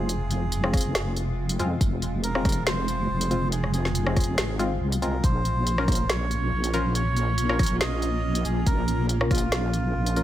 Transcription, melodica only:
0.00 1.12 G#4 medium
2.24 2.63 A#4 loud
2.67 3.48 C5 loud
3.52 3.72 G#4 loud
3.73 4.55 G#4 medium
5.02 5.24 A#4 medium
5.24 6.12 C5 loud
6.09 6.76 C#5 loud
6.74 6.94 C5 loud
6.95 7.77 C#5 loud
7.80 8.47 D#5 loud
8.45 8.67 G#4 loud
8.66 9.06 A#4 loud
9.31 10.23 F4 loud

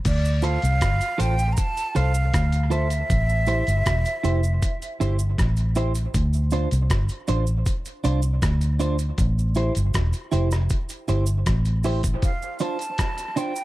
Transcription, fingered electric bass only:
0.06 0.57 D2 loud
0.64 0.80 C2 medium
0.82 0.99 G1 medium
1.20 1.54 A1 loud
1.97 2.30 C2 medium
2.34 3.02 D2 loud
3.10 3.61 A1 loud
3.68 3.84 G1 medium
3.87 4.04 E1 medium
4.25 4.58 F1 medium
5.01 5.34 G1 medium
5.39 6.06 A1 medium
6.15 6.66 D2 loud
6.72 6.88 C2 medium
6.91 7.08 G1 medium
7.29 7.63 A1 medium
8.05 8.39 C2 medium
8.43 9.10 D2 medium
9.19 9.70 A1 loud
9.76 9.93 G1 medium
9.95 10.12 E1 medium
10.33 10.67 F1 medium
11.09 11.43 G1 medium
11.47 12.15 A1 medium

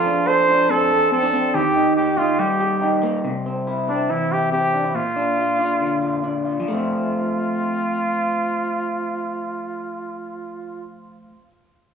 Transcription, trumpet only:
0.00 0.28 F4 medium
0.27 0.72 C5 loud
0.70 1.11 A4 loud
1.12 1.56 A4 loud
1.54 1.96 G4 loud
1.96 2.19 G4 medium
2.18 2.41 F4 medium
2.39 3.03 G4 medium
3.89 4.11 D4 medium
4.10 4.33 E4 medium
4.32 4.52 G4 loud
4.52 4.97 G4 loud
4.95 6.44 F4 loud
6.66 10.83 F4 medium

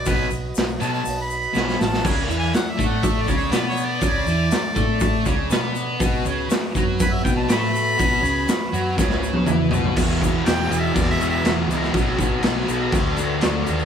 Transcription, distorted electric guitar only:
0.05 0.25 B2 medium
0.05 0.25 F#3 medium
0.05 0.26 B3 medium
0.80 0.99 B2 loud
0.80 1.00 F#3 loud
0.80 1.01 B3 loud
1.53 1.73 B2 loud
1.53 1.74 F#3 loud
1.53 1.75 B3 loud
2.04 2.28 C#3 medium
2.04 2.28 C#4 medium
2.28 2.52 E3 medium
2.28 2.53 E4 loud
2.54 muted distorted electric guitar stroke soft
2.77 3.26 A3 medium
2.77 3.27 A4 medium
3.26 3.51 C#3 medium
3.26 3.52 C#4 loud
3.50 4.00 B3 loud
3.50 4.01 B4 loud
4.00 4.25 C#3 medium
4.00 4.25 C#4 loud
4.27 4.51 E3 medium
4.27 4.51 E4 loud
4.52 muted distorted electric guitar stroke soft
4.75 5.24 A3 medium
4.75 5.25 A4 medium
5.25 5.50 C#3 loud
5.25 5.50 C#4 loud
5.50 5.99 B3 loud
5.50 6.00 B4 loud
5.99 6.24 B2 loud
5.99 6.25 B3 loud
6.25 6.49 C#3 loud
6.25 6.50 C#4 loud
6.50 muted distorted electric guitar stroke medium
6.75 7.24 F#3 loud
6.75 7.24 F#4 loud
7.24 7.48 B2 loud
7.24 7.48 B3 loud
7.47 7.97 A3 loud
7.47 7.97 A4 loud
7.97 8.22 B2 medium
7.97 8.22 B3 loud
8.22 8.46 C#3 loud
8.22 8.47 C#4 loud
8.48 muted distorted electric guitar stroke medium
8.72 8.96 F#3 medium
8.72 8.97 F#4 loud
8.97 9.46 C#3 loud
8.97 9.46 C#4 loud
9.46 9.69 E3 loud
9.46 9.70 E4 loud
9.69 9.94 B2 loud
9.69 9.95 B3 loud
9.94 10.42 E2 medium
9.94 10.22 B2 loud
9.99 10.18 E3 loud
10.19 10.44 B2 medium
10.19 10.46 E3 medium
10.44 10.70 E2 medium
10.44 10.69 B2 medium
10.44 10.66 E3 medium
10.67 10.94 B2 medium
10.67 10.95 E3 loud
10.72 10.92 E2 medium
10.93 11.42 E2 medium
10.93 11.20 B2 medium
10.93 11.17 E3 medium
11.18 11.44 B2 medium
11.18 11.46 E3 medium
11.43 11.92 E2 loud
11.43 11.70 B2 loud
11.43 11.67 E3 loud
11.68 11.91 B2 medium
11.68 11.92 E3 medium
11.92 12.40 B2 medium
11.92 12.19 F#3 loud
11.96 12.15 B3 loud
12.16 12.42 F#3 medium
12.16 12.44 B3 medium
12.41 12.68 B2 medium
12.41 12.67 F#3 medium
12.41 12.65 B3 medium
12.66 12.91 B2 medium
12.66 12.91 F#3 medium
12.66 12.90 B3 medium
12.91 13.39 D3 loud
12.91 13.18 A3 loud
12.91 13.15 D4 loud
13.16 13.41 A3 medium
13.16 13.43 D4 medium
13.40 13.85 D3 loud
13.40 13.69 A3 loud
13.40 13.65 D4 loud
13.66 13.85 A3 medium
13.66 13.85 D4 medium

